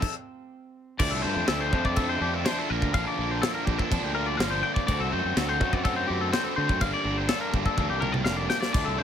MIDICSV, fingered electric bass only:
0, 0, Header, 1, 2, 480
1, 0, Start_track
1, 0, Key_signature, -2, "minor"
1, 0, Tempo, 484262
1, 993, Time_signature, 4, 2, 24, 8
1, 8951, End_track
2, 0, Start_track
2, 0, Title_t, "Fingered electric bass"
2, 0, Program_c, 0, 33
2, 984, Note_on_c, 0, 38, 97
2, 1097, Note_off_c, 0, 38, 0
2, 1107, Note_on_c, 0, 36, 83
2, 1218, Note_off_c, 0, 36, 0
2, 1233, Note_on_c, 0, 43, 91
2, 1342, Note_off_c, 0, 43, 0
2, 1348, Note_on_c, 0, 41, 89
2, 1459, Note_off_c, 0, 41, 0
2, 1465, Note_on_c, 0, 38, 92
2, 1708, Note_off_c, 0, 38, 0
2, 1708, Note_on_c, 0, 41, 85
2, 2152, Note_off_c, 0, 41, 0
2, 2190, Note_on_c, 0, 41, 94
2, 2409, Note_off_c, 0, 41, 0
2, 2677, Note_on_c, 0, 34, 96
2, 2785, Note_off_c, 0, 34, 0
2, 2789, Note_on_c, 0, 38, 81
2, 2901, Note_off_c, 0, 38, 0
2, 2910, Note_on_c, 0, 34, 93
2, 3021, Note_off_c, 0, 34, 0
2, 3156, Note_on_c, 0, 34, 105
2, 3373, Note_off_c, 0, 34, 0
2, 3634, Note_on_c, 0, 34, 86
2, 3743, Note_off_c, 0, 34, 0
2, 3871, Note_on_c, 0, 41, 117
2, 3979, Note_off_c, 0, 41, 0
2, 3985, Note_on_c, 0, 38, 78
2, 4314, Note_off_c, 0, 38, 0
2, 4352, Note_on_c, 0, 31, 105
2, 4570, Note_off_c, 0, 31, 0
2, 4835, Note_on_c, 0, 38, 97
2, 4943, Note_off_c, 0, 38, 0
2, 4958, Note_on_c, 0, 36, 86
2, 5065, Note_off_c, 0, 36, 0
2, 5087, Note_on_c, 0, 42, 100
2, 5190, Note_off_c, 0, 42, 0
2, 5202, Note_on_c, 0, 42, 84
2, 5307, Note_off_c, 0, 42, 0
2, 5318, Note_on_c, 0, 38, 102
2, 5554, Note_off_c, 0, 38, 0
2, 5554, Note_on_c, 0, 42, 89
2, 5994, Note_off_c, 0, 42, 0
2, 6045, Note_on_c, 0, 42, 91
2, 6256, Note_off_c, 0, 42, 0
2, 6516, Note_on_c, 0, 50, 94
2, 6623, Note_off_c, 0, 50, 0
2, 6635, Note_on_c, 0, 42, 87
2, 6740, Note_off_c, 0, 42, 0
2, 6746, Note_on_c, 0, 31, 94
2, 6857, Note_off_c, 0, 31, 0
2, 6986, Note_on_c, 0, 31, 102
2, 7205, Note_off_c, 0, 31, 0
2, 7463, Note_on_c, 0, 31, 88
2, 7575, Note_off_c, 0, 31, 0
2, 7699, Note_on_c, 0, 38, 106
2, 7813, Note_off_c, 0, 38, 0
2, 7818, Note_on_c, 0, 36, 81
2, 8148, Note_off_c, 0, 36, 0
2, 8171, Note_on_c, 0, 29, 98
2, 8396, Note_off_c, 0, 29, 0
2, 8666, Note_on_c, 0, 38, 90
2, 8775, Note_off_c, 0, 38, 0
2, 8794, Note_on_c, 0, 36, 82
2, 8900, Note_off_c, 0, 36, 0
2, 8915, Note_on_c, 0, 43, 90
2, 8951, Note_off_c, 0, 43, 0
2, 8951, End_track
0, 0, End_of_file